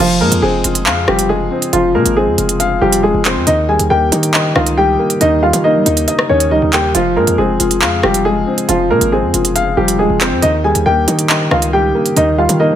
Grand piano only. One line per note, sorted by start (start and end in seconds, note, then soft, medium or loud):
0.00 0.18 F3 medium
0.00 0.18 F4 loud
0.21 0.40 A#3 medium
0.21 0.40 A#4 medium
0.42 1.04 G#3 medium
0.42 1.04 G#4 medium
1.08 1.27 G3 medium
1.08 1.27 G4 medium
1.29 1.71 G#3 medium
1.29 1.70 G#4 medium
1.73 1.92 F3 medium
1.73 1.92 F4 medium
1.95 2.14 A#3 medium
1.95 2.14 A#4 medium
2.17 2.78 G#3 medium
2.17 2.78 G#4 medium
2.81 3.01 G3 medium
2.81 3.01 G4 medium
3.03 3.23 G#3 medium
3.03 3.22 G#4 medium
3.25 3.45 C4 medium
3.25 3.44 C5 medium
3.47 3.66 D#4 medium
3.47 3.66 D#5 medium
3.69 3.88 G#4 medium
3.69 3.88 G#5 medium
3.90 4.52 G4 medium
3.90 4.52 G5 medium
4.56 4.75 F4 medium
4.56 4.75 F5 medium
4.78 5.19 G4 medium
4.78 5.18 G5 medium
5.21 5.40 D#4 medium
5.21 5.40 D#5 medium
5.43 5.62 F4 medium
5.43 5.62 F5 medium
5.64 6.26 D#4 medium
5.64 6.25 D#5 medium
6.29 6.49 C#4 medium
6.29 6.49 C#5 medium
6.51 6.71 D#4 medium
6.51 6.70 D#5 medium
6.73 6.93 G4 medium
6.73 6.92 G5 medium
6.95 7.14 F3 medium
6.95 7.14 F4 loud
7.16 7.36 A#3 medium
7.16 7.36 A#4 medium
7.38 8.00 G#3 medium
7.38 7.99 G#4 medium
8.03 8.23 G3 medium
8.03 8.23 G4 medium
8.25 8.66 G#3 medium
8.25 8.66 G#4 medium
8.69 8.88 F3 medium
8.69 8.88 F4 medium
8.91 9.10 A#3 medium
8.91 9.10 A#4 medium
9.12 9.74 G#3 medium
9.12 9.74 G#4 medium
9.77 9.97 G3 medium
9.77 9.96 G4 medium
9.99 10.19 G#3 medium
9.99 10.18 G#4 medium
10.21 10.40 C4 medium
10.21 10.40 C5 medium
10.42 10.62 D#4 medium
10.42 10.62 D#5 loud
10.64 10.84 G#4 medium
10.64 10.83 G#5 medium
10.86 11.48 G4 medium
10.86 11.47 G5 medium
11.51 11.71 F4 medium
11.51 11.70 F5 medium
11.73 12.14 G4 medium
11.73 12.14 G5 medium
12.17 12.36 D#4 medium
12.17 12.36 D#5 medium
12.38 12.58 F4 medium
12.38 12.57 F5 medium
12.60 12.76 D#4 medium
12.60 12.76 D#5 medium